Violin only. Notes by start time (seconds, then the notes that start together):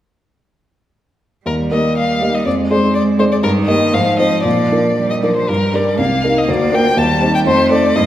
1.46 A#4
1.72 D#5
1.97 F5
2.34 D#5
2.46 D5
2.71 C5
2.95 D5
3.19 C5
3.32 D5
3.43 A#4
3.68 D#5
3.94 F5
4.19 D#5
4.44 D5
5.10 D#5
5.23 D5
5.36 C5
5.49 A#4
5.75 D5
6.00 F5
6.38 D#5
6.50 D5
6.74 G5
6.98 A5
7.35 G5
7.47 C5
7.71 D5
7.96 D#5